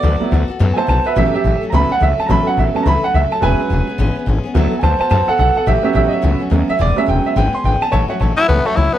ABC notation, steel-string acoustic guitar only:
X:1
M:4/4
L:1/8
Q:"Swing" 1/4=213
K:A
V:1 name="Steel-string acoustic guitar"
[D,F,B,FA] [B,FA] [F,B,FA] [B,FA] [D,F,B,FA] [B,FA] [F,B,FA] [B,FA] | [A,,E,F,A,CA] [F,A,CA] [F,A,CA] [F,A,CA] [A,,E,F,A,CA] [F,A,CA] [F,A,CA] [F,A,CA] | [A,,E,F,A,CA] [F,A,CA] [F,A,CA] [F,A,CA] [A,,E,F,A,CA] [F,A,CA] [F,A,CA] [F,A,CA] | [E,G,B,CG] [B,CG] [G,B,CG] [B,CG] [E,G,B,CG] [B,CG] [G,B,CG] [B,CG] |
[D,F,B,FA] [B,FA] [F,B,FA] [B,FA] [D,F,B,FA] [B,FA] [F,B,FA] [B,FA] | [A,,E,F,A,CF] [F,A,CF] [F,A,CF] [F,A,CF] [A,,E,F,A,CF] [F,A,CF] [F,A,CF] [F,A,CF] | [E,G,B,CG] [B,CG] [G,B,CG] [B,CG] [E,G,B,CG] [B,CG] [G,B,CG] [B,CG] | [A,,E,F,A,CF] [F,A,CF] [F,A,CF] [F,A,CF] [A,,E,F,A,CF] [F,A,CF] [F,A,CF] [A,CF] |]